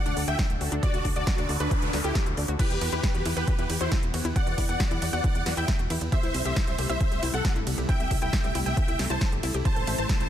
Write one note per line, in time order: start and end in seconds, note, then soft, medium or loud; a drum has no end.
0.00 2.56 D3 medium
0.00 2.56 D4 medium
0.00 2.56 F#4 medium
0.00 2.56 A4 medium
0.00 0.21 D5 medium
0.00 0.21 F#5 medium
0.06 0.14 D2 medium
0.06 0.08 D4 loud
0.06 closed hi-hat medium
0.17 0.25 D2 loud
0.17 open hi-hat loud
0.28 0.36 D2 loud
0.28 0.32 F#4 medium
0.28 0.47 E5 medium
0.28 0.47 G5 medium
0.28 closed hi-hat medium
0.39 0.41 D4 loud
0.39 kick loud
0.39 snare loud
0.39 closed hi-hat medium
0.50 0.58 D1 medium
0.50 closed hi-hat medium
0.61 0.69 D2 loud
0.61 0.65 F#4 medium
0.61 open hi-hat medium
0.72 0.80 D2 medium
0.72 0.74 D4 loud
0.72 closed hi-hat medium
0.83 1.11 F#4 medium
0.83 1.11 D5 loud
0.83 kick loud
0.83 closed hi-hat loud
0.83 noise sweep medium
0.94 1.02 D2 medium
0.94 0.98 F#4 medium
0.94 closed hi-hat medium
1.05 1.13 D2 loud
1.05 1.07 D4 loud
1.05 kick medium
1.05 open hi-hat loud
1.16 1.24 D2 medium
1.16 1.54 F#4 medium
1.16 1.54 D5 loud
1.16 closed hi-hat medium
1.27 1.31 F#4 medium
1.27 kick loud
1.27 snare loud
1.27 closed hi-hat loud
1.38 1.46 D2 medium
1.38 1.41 D4 loud
1.38 closed hi-hat medium
1.49 1.57 D2 loud
1.49 open hi-hat loud
1.60 1.68 D2 medium
1.60 1.98 D4 medium
1.60 1.64 F#4 medium
1.60 1.98 B4 loud
1.60 1.98 B4 medium
1.60 closed hi-hat medium
1.71 1.74 D4 loud
1.71 kick loud
1.71 closed hi-hat loud
1.82 1.90 D2 medium
1.82 closed hi-hat medium
1.93 2.01 D2 loud
1.93 1.97 F#4 medium
1.93 snare medium
1.93 open hi-hat loud
2.04 2.12 D2 loud
2.04 2.23 E4 medium
2.04 2.23 G4 medium
2.04 2.08 A4 medium
2.04 closed hi-hat medium
2.15 kick loud
2.15 snare loud
2.15 closed hi-hat loud
2.26 2.34 D2 medium
2.26 2.29 F#4 medium
2.26 closed hi-hat medium
2.37 2.45 D2 loud
2.37 2.41 D5 medium
2.37 open hi-hat medium
2.48 2.56 D2 medium
2.48 2.52 F#4 loud
2.48 closed hi-hat medium
2.59 6.09 E3 medium
2.59 6.09 B3 medium
2.59 2.62 E4 loud
2.59 6.09 G4 medium
2.59 2.88 G4 medium
2.59 2.88 B4 loud
2.59 6.09 F#5 medium
2.59 kick loud
2.59 closed hi-hat loud
2.59 crash medium
2.70 2.78 E2 medium
2.70 closed hi-hat medium
2.81 2.90 E2 loud
2.81 2.86 F#4 medium
2.81 open hi-hat loud
2.81 ride medium
2.92 3.01 E2 medium
2.92 2.95 E4 loud
2.92 3.30 G4 medium
2.92 3.30 B4 loud
2.92 closed hi-hat medium
3.03 kick loud
3.03 snare loud
3.03 closed hi-hat loud
3.14 3.23 E2 medium
3.14 3.19 F#4 medium
3.14 closed hi-hat medium
3.25 3.34 E2 loud
3.25 3.28 E4 loud
3.25 open hi-hat loud
3.25 ride medium
3.37 3.45 E2 loud
3.37 3.74 G4 medium
3.37 3.74 B4 medium
3.37 closed hi-hat medium
3.48 3.52 F#4 medium
3.48 kick loud
3.48 closed hi-hat loud
3.59 3.67 E2 medium
3.59 3.61 E4 loud
3.59 closed hi-hat medium
3.70 3.78 E2 loud
3.70 open hi-hat loud
3.70 ride medium
3.81 3.89 E2 loud
3.81 4.00 E4 medium
3.81 3.85 F#4 medium
3.81 4.00 C5 medium
3.81 closed hi-hat medium
3.92 3.94 E4 loud
3.92 kick loud
3.92 snare loud
3.92 closed hi-hat medium
4.03 4.11 E1 medium
4.03 closed hi-hat medium
4.14 4.22 E2 loud
4.14 4.18 F#4 medium
4.14 open hi-hat medium
4.14 ride medium
4.25 4.33 E2 medium
4.25 4.27 E4 loud
4.25 closed hi-hat medium
4.36 4.64 D5 medium
4.36 4.64 F#5 loud
4.36 kick loud
4.36 closed hi-hat loud
4.47 4.55 E2 medium
4.47 4.51 F#4 medium
4.47 closed hi-hat medium
4.58 4.66 E2 loud
4.58 4.60 E4 loud
4.58 kick medium
4.58 open hi-hat loud
4.58 ride medium
4.69 4.77 E2 loud
4.69 5.07 D5 medium
4.69 5.07 F#5 loud
4.69 closed hi-hat medium
4.80 4.84 F#4 medium
4.80 kick loud
4.80 snare loud
4.80 closed hi-hat loud
4.91 4.99 E2 medium
4.91 4.93 E4 loud
4.91 closed hi-hat medium
5.02 5.10 E2 loud
5.02 open hi-hat loud
5.02 ride medium
5.13 5.21 E2 medium
5.13 5.17 F#4 medium
5.13 5.51 D5 medium
5.13 5.51 F#5 medium
5.13 5.51 F#5 loud
5.13 closed hi-hat medium
5.24 5.27 E4 loud
5.24 kick loud
5.24 closed hi-hat medium
5.35 5.43 E2 medium
5.35 closed hi-hat medium
5.46 5.54 E2 loud
5.46 5.50 F#4 medium
5.46 snare medium
5.46 open hi-hat loud
5.46 ride medium
5.57 5.65 E2 loud
5.57 5.60 E4 loud
5.57 5.76 E5 medium
5.57 5.76 G5 medium
5.57 closed hi-hat medium
5.68 kick loud
5.68 snare loud
5.68 closed hi-hat loud
5.79 5.87 E1 medium
5.79 5.83 F#4 medium
5.79 closed hi-hat medium
5.90 5.98 E2 loud
5.90 5.93 E4 loud
5.90 open hi-hat loud
5.90 ride medium
6.01 6.09 E2 medium
6.01 closed hi-hat medium
6.12 9.62 C3 medium
6.12 9.62 G3 medium
6.12 10.29 A3 medium
6.12 10.29 E4 medium
6.12 6.16 G4 medium
6.12 6.41 C5 medium
6.12 6.41 E5 loud
6.12 kick loud
6.12 closed hi-hat medium
6.23 6.31 C2 medium
6.23 6.26 E4 loud
6.23 closed hi-hat medium
6.34 6.42 C2 loud
6.34 open hi-hat loud
6.34 ride medium
6.45 6.54 C2 medium
6.45 6.50 G4 medium
6.45 6.83 C5 medium
6.45 6.83 E5 loud
6.45 closed hi-hat medium
6.56 6.59 E4 loud
6.56 kick loud
6.56 snare loud
6.56 closed hi-hat medium
6.67 6.76 C2 medium
6.67 closed hi-hat medium
6.78 6.87 C2 loud
6.78 6.83 G4 medium
6.78 open hi-hat loud
6.78 ride medium
6.89 6.98 C2 medium
6.89 6.92 E4 loud
6.89 7.27 C5 medium
6.89 7.27 E5 loud
6.89 closed hi-hat medium
7.01 kick loud
7.01 closed hi-hat medium
7.12 7.20 C2 medium
7.12 7.16 G4 medium
7.12 closed hi-hat medium
7.23 7.31 C2 loud
7.23 7.25 E4 loud
7.23 open hi-hat loud
7.23 ride medium
7.34 7.42 C2 loud
7.34 7.53 A4 medium
7.34 7.52 F#5 medium
7.34 7.53 F#5 medium
7.34 closed hi-hat medium
7.45 7.49 G4 medium
7.45 kick loud
7.45 snare loud
7.45 closed hi-hat medium
7.56 7.64 G1 medium
7.56 7.58 E4 loud
7.56 closed hi-hat soft
7.67 7.75 C2 loud
7.67 open hi-hat loud
7.67 ride medium
7.78 7.86 C2 medium
7.78 7.82 G4 medium
7.78 closed hi-hat medium
7.89 7.91 E4 loud
7.89 8.17 E5 medium
7.89 8.17 G5 loud
7.89 kick loud
7.89 closed hi-hat medium
8.00 8.08 C2 medium
8.00 closed hi-hat soft
8.11 8.19 C2 loud
8.11 8.15 G4 medium
8.11 kick medium
8.11 open hi-hat loud
8.11 ride medium
8.22 8.30 C2 medium
8.22 8.24 E4 loud
8.22 8.59 E5 medium
8.22 8.60 G5 loud
8.22 closed hi-hat medium
8.33 kick loud
8.33 snare loud
8.33 closed hi-hat medium
8.44 8.52 C2 medium
8.44 8.48 G4 medium
8.44 closed hi-hat medium
8.55 8.63 C2 loud
8.55 8.57 E4 loud
8.55 open hi-hat loud
8.55 ride medium
8.66 8.74 C2 medium
8.66 9.04 E5 medium
8.66 9.04 G5 medium
8.66 9.04 G5 loud
8.66 closed hi-hat soft
8.77 8.81 G4 medium
8.77 kick loud
8.77 closed hi-hat medium
8.88 8.96 C2 medium
8.88 8.90 E4 loud
8.88 closed hi-hat medium
8.99 9.07 C2 loud
8.99 snare medium
8.99 open hi-hat loud
8.99 ride medium
9.10 9.18 C2 loud
9.10 9.13 E4 loud
9.10 9.29 C5 medium
9.10 9.29 A5 medium
9.10 closed hi-hat medium
9.21 9.25 C5 medium
9.21 kick loud
9.21 snare loud
9.21 closed hi-hat medium
9.32 9.40 G1 medium
9.32 9.36 G4 medium
9.32 closed hi-hat medium
9.43 9.51 C2 loud
9.43 9.46 E4 loud
9.43 open hi-hat loud
9.43 ride medium
9.54 9.62 C2 medium
9.54 9.57 G4 loud
9.54 closed hi-hat medium
9.65 10.29 C4 medium
9.65 9.94 C5 medium
9.65 9.93 A5 loud
9.65 9.94 A5 loud
9.65 kick loud
9.65 closed hi-hat medium
9.76 9.84 A1 medium
9.76 9.80 A4 medium
9.76 closed hi-hat soft
9.87 9.95 A1 loud
9.87 9.90 E4 loud
9.87 open hi-hat loud
9.87 ride medium
9.98 10.06 A1 medium
9.98 10.29 C5 medium
9.98 10.29 A5 loud
9.98 closed hi-hat medium
10.09 10.13 A4 medium
10.09 kick loud
10.09 snare loud
10.09 closed hi-hat medium
10.20 10.29 A1 medium
10.20 10.23 E4 loud
10.20 closed hi-hat medium